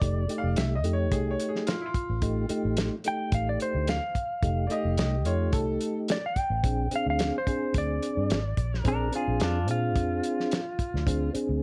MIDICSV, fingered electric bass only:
0, 0, Header, 1, 3, 480
1, 0, Start_track
1, 0, Tempo, 551978
1, 21, Time_signature, 4, 2, 24, 8
1, 10113, End_track
2, 0, Start_track
2, 0, Title_t, "Fingered electric bass"
2, 0, Program_c, 0, 33
2, 13, Note_on_c, 0, 29, 94
2, 219, Note_off_c, 0, 29, 0
2, 380, Note_on_c, 0, 29, 85
2, 479, Note_off_c, 0, 29, 0
2, 496, Note_on_c, 0, 36, 95
2, 729, Note_off_c, 0, 36, 0
2, 729, Note_on_c, 0, 41, 78
2, 972, Note_off_c, 0, 41, 0
2, 972, Note_on_c, 0, 36, 84
2, 1178, Note_off_c, 0, 36, 0
2, 1823, Note_on_c, 0, 33, 91
2, 2123, Note_off_c, 0, 33, 0
2, 2304, Note_on_c, 0, 33, 84
2, 2507, Note_off_c, 0, 33, 0
2, 2889, Note_on_c, 0, 33, 87
2, 3096, Note_off_c, 0, 33, 0
2, 3259, Note_on_c, 0, 38, 85
2, 3464, Note_off_c, 0, 38, 0
2, 3849, Note_on_c, 0, 29, 88
2, 4055, Note_off_c, 0, 29, 0
2, 4216, Note_on_c, 0, 29, 89
2, 4315, Note_off_c, 0, 29, 0
2, 4326, Note_on_c, 0, 36, 91
2, 4575, Note_off_c, 0, 36, 0
2, 4575, Note_on_c, 0, 41, 80
2, 4810, Note_off_c, 0, 41, 0
2, 4810, Note_on_c, 0, 36, 86
2, 5016, Note_off_c, 0, 36, 0
2, 5654, Note_on_c, 0, 33, 83
2, 5754, Note_off_c, 0, 33, 0
2, 5772, Note_on_c, 0, 34, 105
2, 5978, Note_off_c, 0, 34, 0
2, 6143, Note_on_c, 0, 38, 84
2, 6347, Note_off_c, 0, 38, 0
2, 6735, Note_on_c, 0, 38, 87
2, 6940, Note_off_c, 0, 38, 0
2, 7106, Note_on_c, 0, 43, 80
2, 7202, Note_off_c, 0, 43, 0
2, 7221, Note_on_c, 0, 32, 73
2, 7436, Note_off_c, 0, 32, 0
2, 7456, Note_on_c, 0, 34, 81
2, 7674, Note_off_c, 0, 34, 0
2, 7697, Note_on_c, 0, 34, 89
2, 7902, Note_off_c, 0, 34, 0
2, 8068, Note_on_c, 0, 34, 92
2, 8164, Note_off_c, 0, 34, 0
2, 8179, Note_on_c, 0, 41, 92
2, 8424, Note_off_c, 0, 41, 0
2, 8424, Note_on_c, 0, 46, 83
2, 8660, Note_off_c, 0, 46, 0
2, 8660, Note_on_c, 0, 41, 88
2, 8864, Note_off_c, 0, 41, 0
2, 9514, Note_on_c, 0, 38, 92
2, 9813, Note_off_c, 0, 38, 0
2, 9992, Note_on_c, 0, 38, 81
2, 10113, Note_off_c, 0, 38, 0
2, 10113, End_track
3, 0, Start_track
3, 0, Title_t, "Muted fingered electric bass strokes"
3, 2171, Note_on_c, 9, 29, 36
3, 2258, Note_off_c, 9, 29, 0
3, 9867, Note_on_c, 9, 29, 35
3, 9954, Note_off_c, 9, 29, 0
3, 10113, End_track
0, 0, End_of_file